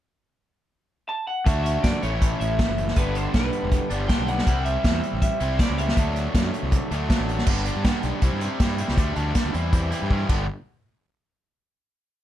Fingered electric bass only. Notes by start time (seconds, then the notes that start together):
1.46 D2
1.84 F#2
2.03 A1
2.41 A1
2.68 F#1
2.97 G1
3.34 B1
3.63 E1
3.90 G1
4.19 B1
4.47 C2
4.85 E2
5.13 A1
5.41 C2
5.69 C#2
5.97 D2
6.35 F#2
6.63 C2
6.91 D2
7.19 A1
7.47 G1
7.76 G2
8.04 B1
8.22 C2
8.32 G2
8.60 G2
8.89 C2
8.97 D2
9.16 D2
9.45 D2
9.54 E2
10.02 G2
10.29 G1